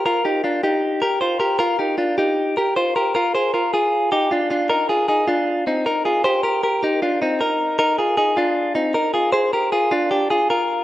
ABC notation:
X:1
M:4/4
L:1/8
Q:1/4=155
K:Bbmix
V:1 name="Clean electric guitar"
[FB] [EG] [DF] [EG]2 [GB] [Fc] [GB] | [FB] [EG] [DF] [EG]2 [GB] [Fc] [GB] | [FB] [Ac] [FB] [FA]2 [EG] [DF] [DF] | [EB] [FA] [EA] [DF]2 [CE] [EB] [FA] |
[Gc] [GB] [GB] [EG] [DF] [CE] [EB]2 | [EB] [FA] [EA] [DF]2 [CE] [EB] [FA] | [Ac] [GB] [FA] [DF] [DG] [FA] [FB]2 |]